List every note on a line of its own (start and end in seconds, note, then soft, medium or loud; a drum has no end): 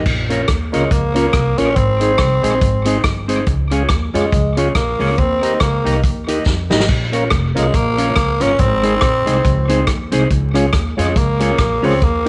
0.06 0.42 A#1 loud
0.06 kick loud
0.06 crash loud
0.29 0.41 A#3 medium
0.29 0.41 C#4 medium
0.29 0.45 C#4 medium
0.29 0.42 F4 medium
0.29 0.45 F4 medium
0.29 0.42 A#4 loud
0.29 0.46 A#4 loud
0.29 0.46 C#5 medium
0.29 closed hi-hat medium
0.48 0.70 D#2 medium
0.48 kick loud
0.48 cross-stick loud
0.48 closed hi-hat medium
0.72 0.89 C#2 medium
0.72 0.93 G#3 medium
0.72 0.84 A#3 medium
0.72 0.84 C#4 medium
0.72 0.88 C#4 medium
0.72 0.84 F4 medium
0.72 0.88 F4 medium
0.72 0.85 A#4 loud
0.72 0.88 A#4 medium
0.72 0.89 C#5 loud
0.72 closed hi-hat medium
0.91 1.27 C#2 medium
0.91 1.59 A#3 loud
0.91 kick loud
0.91 closed hi-hat medium
1.14 1.26 A#3 medium
1.14 1.27 C#4 medium
1.14 1.30 C#4 medium
1.14 1.27 F4 medium
1.14 1.31 F4 loud
1.14 1.27 A#4 loud
1.14 1.31 A#4 medium
1.14 1.31 C#5 medium
1.14 closed hi-hat medium
1.33 1.54 C2 medium
1.33 kick loud
1.33 cross-stick loud
1.33 closed hi-hat medium
1.57 1.74 A#1 medium
1.57 1.69 A#3 loud
1.57 1.70 C#4 medium
1.57 1.77 C#4 loud
1.57 1.73 C#4 medium
1.57 1.70 F4 medium
1.57 1.73 F4 medium
1.57 1.70 A#4 medium
1.57 1.74 A#4 medium
1.57 1.74 C#5 loud
1.57 closed hi-hat medium
1.76 2.13 G#1 loud
1.76 3.04 C4 loud
1.76 kick loud
1.76 closed hi-hat medium
2.00 2.12 G#3 medium
2.00 2.12 C4 medium
2.00 2.16 C4 medium
2.00 2.12 D#4 medium
2.00 2.16 D#4 medium
2.00 2.13 G#4 loud
2.00 2.16 G#4 medium
2.00 2.17 C5 medium
2.00 closed hi-hat medium
2.18 2.40 C2 loud
2.18 kick loud
2.18 cross-stick loud
2.18 closed hi-hat medium
2.42 2.59 A#1 medium
2.42 2.54 G#3 loud
2.42 2.55 C4 medium
2.42 2.58 C4 medium
2.42 2.55 D#4 medium
2.42 2.58 D#4 medium
2.42 2.55 G#4 loud
2.42 2.59 G#4 medium
2.42 2.59 C5 medium
2.42 closed hi-hat medium
2.61 2.98 G#1 loud
2.61 kick loud
2.61 closed hi-hat medium
2.85 2.97 G#3 medium
2.85 2.97 C4 medium
2.85 3.01 C4 medium
2.85 2.98 D#4 medium
2.85 3.01 D#4 loud
2.85 2.98 G#4 loud
2.85 3.01 G#4 medium
2.85 3.02 C5 loud
2.85 closed hi-hat medium
3.04 3.40 G1 medium
3.04 kick loud
3.04 cross-stick loud
3.04 closed hi-hat medium
3.28 3.40 G#3 medium
3.28 3.43 C4 medium
3.28 3.40 C4 medium
3.28 3.44 D#4 medium
3.28 3.40 D#4 medium
3.28 3.40 G#4 loud
3.28 3.44 G#4 medium
3.28 3.44 C5 loud
3.28 closed hi-hat medium
3.46 3.83 C#2 loud
3.46 kick loud
3.46 closed hi-hat medium
3.71 3.83 G#3 medium
3.71 3.83 C#4 medium
3.71 3.86 C#4 medium
3.71 3.83 F4 medium
3.71 3.87 F4 medium
3.71 3.83 G#4 loud
3.71 3.87 G#4 medium
3.71 3.87 C#5 medium
3.71 closed hi-hat medium
3.89 4.11 D#2 medium
3.89 kick loud
3.89 cross-stick loud
3.89 closed hi-hat medium
4.14 4.30 F2 medium
4.14 4.25 G#3 medium
4.14 4.54 G#3 medium
4.14 4.29 C#4 medium
4.14 4.26 C#4 medium
4.14 4.29 F4 medium
4.14 4.26 F4 medium
4.14 4.26 G#4 loud
4.14 4.29 G#4 medium
4.14 4.30 C#5 medium
4.14 closed hi-hat medium
4.32 4.69 C#2 medium
4.32 kick loud
4.32 closed hi-hat medium
4.56 4.68 G#3 medium
4.56 4.68 C#4 medium
4.56 4.72 C#4 medium
4.56 4.68 F4 medium
4.56 4.72 F4 medium
4.56 4.69 G#4 loud
4.56 4.72 G#4 medium
4.56 4.72 C#5 medium
4.56 closed hi-hat medium
4.75 4.96 A#1 medium
4.75 5.20 A#3 medium
4.75 kick loud
4.75 cross-stick loud
4.75 closed hi-hat medium
4.99 5.15 C#2 medium
4.99 5.11 G#3 loud
4.99 5.11 C#4 medium
4.99 5.14 C#4 medium
4.99 5.11 F4 medium
4.99 5.15 F4 medium
4.99 5.11 G#4 loud
4.99 5.15 G#4 loud
4.99 5.15 C#5 loud
4.99 open hi-hat medium
5.18 5.54 D#2 loud
5.18 5.61 C4 loud
5.18 kick loud
5.18 closed hi-hat medium
5.42 5.53 A#3 medium
5.42 5.54 D#4 medium
5.42 5.57 D#4 medium
5.42 5.54 G4 medium
5.42 5.58 G4 medium
5.42 5.54 A#4 loud
5.42 5.58 A#4 medium
5.42 5.58 D#5 medium
5.42 closed hi-hat medium
5.60 5.81 C#2 medium
5.60 6.01 A#3 medium
5.60 kick loud
5.60 cross-stick loud
5.60 closed hi-hat medium
5.84 6.01 C2 medium
5.84 5.96 A#3 medium
5.84 5.96 D#4 medium
5.84 6.00 D#4 medium
5.84 5.96 G4 medium
5.84 6.00 G4 medium
5.84 5.97 A#4 medium
5.84 6.00 A#4 medium
5.84 6.01 D#5 medium
5.84 closed hi-hat medium
6.04 6.40 D#2 medium
6.04 kick loud
6.04 closed hi-hat medium
6.27 6.39 A#3 medium
6.27 6.39 D#4 medium
6.27 6.43 D#4 medium
6.27 6.39 G4 medium
6.27 6.43 G4 medium
6.27 6.40 A#4 loud
6.27 6.43 A#4 medium
6.27 6.44 D#5 medium
6.27 closed hi-hat medium
6.46 6.67 F2 medium
6.46 kick loud
6.46 snare medium
6.70 6.86 G#1 medium
6.70 6.81 A#3 medium
6.70 6.82 D#4 medium
6.70 6.85 D#4 medium
6.70 6.82 G4 medium
6.70 6.85 G4 medium
6.70 6.82 A#4 loud
6.70 6.86 A#4 loud
6.70 6.86 D#5 loud
6.70 snare medium
6.80 snare medium
6.89 7.25 A#1 loud
6.89 kick loud
6.89 crash medium
7.12 7.24 A#3 medium
7.12 7.24 C#4 medium
7.12 7.28 C#4 medium
7.12 7.24 F4 medium
7.12 7.28 F4 medium
7.12 7.25 A#4 loud
7.12 7.28 A#4 medium
7.12 7.28 C#5 medium
7.12 closed hi-hat medium
7.30 7.52 F1 medium
7.30 kick loud
7.30 cross-stick loud
7.30 closed hi-hat medium
7.55 7.72 C2 medium
7.55 7.77 G#3 medium
7.55 7.67 A#3 medium
7.55 7.70 C#4 medium
7.55 7.67 C#4 medium
7.55 7.67 F4 medium
7.55 7.71 F4 medium
7.55 7.67 A#4 loud
7.55 7.71 A#4 medium
7.55 7.71 C#5 medium
7.55 closed hi-hat medium
7.74 8.10 A#1 loud
7.74 8.44 A#3 loud
7.74 kick loud
7.74 closed hi-hat medium
7.97 8.09 A#3 medium
7.97 8.09 C#4 medium
7.97 8.13 C#4 medium
7.97 8.10 F4 medium
7.97 8.13 F4 medium
7.97 8.10 A#4 medium
7.97 8.14 A#4 medium
7.97 8.14 C#5 loud
7.97 closed hi-hat medium
8.16 8.37 C#2 medium
8.16 kick loud
8.16 cross-stick loud
8.16 closed hi-hat medium
8.40 8.57 G1 medium
8.40 8.52 A#3 medium
8.40 8.55 C#4 medium
8.40 8.52 C#4 medium
8.40 8.61 C#4 loud
8.40 8.56 F4 medium
8.40 8.52 F4 medium
8.40 8.53 A#4 loud
8.40 8.56 A#4 medium
8.40 8.56 C#5 medium
8.40 closed hi-hat medium
8.59 8.96 G#1 loud
8.59 9.88 C4 loud
8.59 kick loud
8.59 closed hi-hat medium
8.83 8.95 G#3 medium
8.83 8.95 C4 medium
8.83 8.98 C4 medium
8.83 8.95 D#4 medium
8.83 8.99 D#4 medium
8.83 8.95 G#4 medium
8.83 8.99 G#4 medium
8.83 8.99 C5 medium
8.83 closed hi-hat medium
9.01 9.23 A#1 medium
9.01 kick loud
9.01 cross-stick loud
9.01 closed hi-hat medium
9.25 9.42 C2 medium
9.25 9.37 G#3 medium
9.25 9.41 C4 medium
9.25 9.38 C4 medium
9.25 9.41 D#4 medium
9.25 9.38 D#4 medium
9.25 9.38 G#4 medium
9.25 9.42 G#4 medium
9.25 9.42 C5 loud
9.25 closed hi-hat medium
9.45 9.81 C#2 loud
9.45 kick loud
9.45 closed hi-hat medium
9.68 9.80 G#3 loud
9.68 9.84 C4 medium
9.68 9.80 C4 medium
9.68 9.84 D#4 medium
9.68 9.81 D#4 medium
9.68 9.81 G#4 medium
9.68 9.84 G#4 loud
9.68 9.85 C5 medium
9.68 closed hi-hat medium
9.87 10.08 D#2 medium
9.87 kick loud
9.87 cross-stick loud
9.87 closed hi-hat medium
10.12 10.28 C2 medium
10.12 10.23 G#3 medium
10.12 10.27 C4 loud
10.12 10.23 C4 medium
10.12 10.27 D#4 medium
10.12 10.24 D#4 medium
10.12 10.24 G#4 loud
10.12 10.27 G#4 loud
10.12 10.28 C5 loud
10.12 closed hi-hat medium
10.31 10.67 C#2 loud
10.31 kick loud
10.31 closed hi-hat medium
10.54 10.66 G#3 medium
10.54 10.69 C#4 medium
10.54 10.66 C#4 medium
10.54 10.66 F4 medium
10.54 10.70 F4 medium
10.54 10.67 G#4 loud
10.54 10.70 G#4 medium
10.54 10.70 C#5 medium
10.54 cross-stick medium
10.54 closed hi-hat medium
10.73 10.94 D#2 medium
10.73 kick loud
10.73 cross-stick loud
10.73 closed hi-hat medium
10.97 11.14 F2 loud
10.97 11.09 G#3 medium
10.97 11.19 G#3 medium
10.97 11.09 C#4 medium
10.97 11.12 C#4 medium
10.97 11.09 F4 medium
10.97 11.13 F4 medium
10.97 11.09 G#4 loud
10.97 11.13 G#4 loud
10.97 11.13 C#5 medium
10.97 closed hi-hat medium
11.16 11.53 C#2 loud
11.16 11.86 A#3 loud
11.16 kick loud
11.16 closed hi-hat medium
11.40 11.52 G#3 medium
11.40 11.52 C#4 medium
11.40 11.55 C#4 medium
11.40 11.52 F4 medium
11.40 11.56 F4 medium
11.40 11.52 G#4 loud
11.40 11.56 G#4 medium
11.40 11.56 C#5 loud
11.40 closed hi-hat medium
11.58 11.79 A#1 medium
11.58 kick loud
11.58 cross-stick loud
11.58 closed hi-hat medium
11.82 11.99 C#2 loud
11.82 11.94 G#3 medium
11.82 12.05 C4 loud
11.82 11.98 C#4 medium
11.82 11.94 C#4 medium
11.82 11.95 F4 medium
11.82 11.98 F4 medium
11.82 11.95 G#4 loud
11.82 11.98 G#4 loud
11.82 11.99 C#5 medium
11.82 open hi-hat medium
12.02 12.29 D#2 loud
12.02 12.29 A#3 medium
12.02 kick loud
12.02 closed hi-hat medium
12.25 12.29 A#3 medium